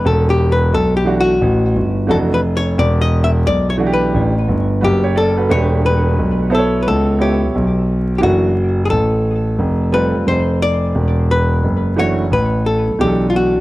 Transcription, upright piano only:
1.05 E3 A3 D4 F#4
2.07 E3 A3 D4 F#4
3.78 E3 A3 D4 F#4
3.87 G4
4.81 F#4 B4
5.04 G4 C#5
5.16 A4 D5
5.37 F#4 B4
5.49 A3 D4 F#4 B4
5.56 G4
6.50 B3 E4 A4 C5
6.58 C#5
7.19 B3 E4 A4 C#5
8.20 E3 A3 D4 F#4
9.92 G3 C4 F4 A4
11.96 E3 A3 D4 F#4
12.99 E3 A3 D4 G#4
13.08 A4

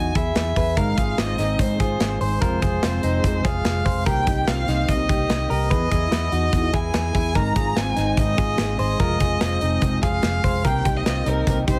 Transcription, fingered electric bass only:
Already playing: E2
0.15 E2
0.35 E2
0.56 E2
0.77 G#1
0.98 G#1
1.18 G#1
1.38 G#1
1.59 G#1
1.80 G#1
2.00 G#1
2.21 G#1
2.42 F1
2.62 F1
2.83 F1
3.04 F1
3.24 F1
3.45 F1
3.65 F1
3.86 F1
4.06 C2
4.27 C2
4.47 C2
4.68 C2
4.88 C2
5.09 C2
5.29 C2
5.50 C2
5.71 E2
5.91 E2
6.11 E2
6.32 E2
6.53 E2
6.74 E2
6.94 E2
7.15 E2
7.35 G#1
7.56 G#1
7.76 G#1
7.97 G#1
8.17 G#1
8.38 G#1
8.59 G#1
8.79 G#1
9.00 F1
9.20 F1
9.41 F1
9.62 F1
9.82 F1
10.03 F1
10.23 F1
10.44 F1
10.65 C2
10.85 C2
11.06 C2
11.26 C2
11.47 C2
11.68 C2

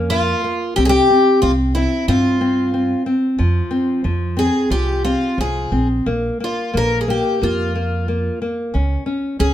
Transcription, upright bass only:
Already playing: F2
0.78 C2
1.43 C2
2.08 G2
3.39 F2
4.05 F2
4.70 C2
5.38 C2
5.72 A#1
6.07 A#1
6.75 A#1
7.42 F2
8.75 C#2
9.40 C#2

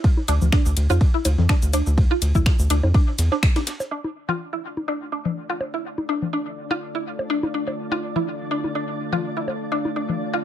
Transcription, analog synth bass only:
0.28 D2
0.42 D2
0.66 D2
0.77 D2
0.90 F2
1.25 D2
1.38 F2
1.62 D2
1.87 D2
2.22 D2
2.35 D2
2.59 D2
2.70 D2
2.83 F2
3.18 E2

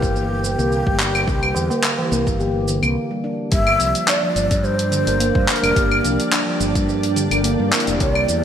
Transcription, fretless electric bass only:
0.03 G1
0.59 C2
0.87 G1
1.28 C2
1.55 E2
2.12 C2
2.27 G1
2.83 C2
3.52 G1
3.80 C2
4.36 G1
4.51 G2
5.07 G1
5.35 G2
5.63 F1
5.76 G1
6.04 C2
6.60 G1
6.75 G2
7.31 G1
7.59 G2
7.88 F1
8.01 C2
8.29 E2

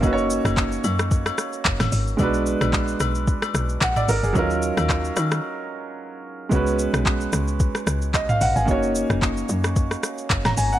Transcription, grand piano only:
0.01 A#3 C#4 D#4
0.05 F#4 B4
0.13 C#5
2.17 G#3 B3 D4
2.21 F#4 B4
3.82 F#5
3.97 D5
4.09 A#4
4.24 G#4
4.33 F#3 C#4 D#4
4.37 F4 A#4
6.49 G#3 B3 C#4
6.53 F#4 B4
8.14 D#5
8.29 F5
8.41 F#5
8.56 G#5
8.65 A#3 C#4 D#4
8.70 F#4 C#5
10.45 A#5
10.58 G#5
10.73 F#5

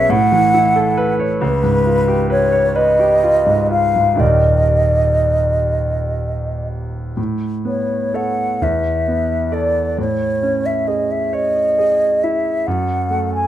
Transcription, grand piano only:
Already playing: B1 B2 F#3 C#4 G#4 B4 C#5
0.10 A2
0.32 E3
0.54 E4
0.76 A4
0.97 B4
1.19 C#5
1.41 C#2
1.63 G#2
1.86 F4
2.08 G4
2.30 B4
2.52 C#5
2.76 B4
2.99 G4
3.23 F4
3.46 G#2
3.70 F4
3.96 G#2
4.15 D#2 D#4 G4 A#4
4.19 D#1 D5
7.17 A2
7.65 B3
8.14 A4 C#5
8.62 E2
9.08 B3
9.52 A4 D5
9.98 A2
10.43 C#4
10.88 G#4
11.33 C#5
11.78 G#4
12.24 E4
12.68 F#2
13.11 A3

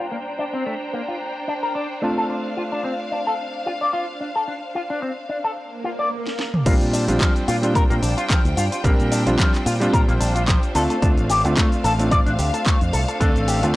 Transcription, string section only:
Already playing: D4 C5 G5 A#5
2.03 F5
6.66 D4 C5 G5
10.75 F5

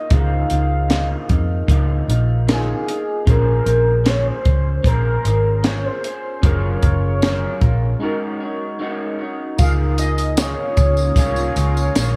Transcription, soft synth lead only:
Already playing: D#5
0.12 F5
2.52 G#4
3.30 A#4
4.08 C#5
4.27 C5
4.87 A#4
5.65 C#5
5.86 C5
6.44 C#5
9.59 F5
9.99 D#5
10.38 C#5
11.18 C#5

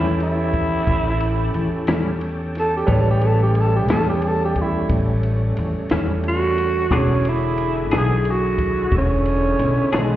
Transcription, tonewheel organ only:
Already playing: C#4 G4 A4
2.88 G3 A3 C#4
6.90 D3 E4 G#4

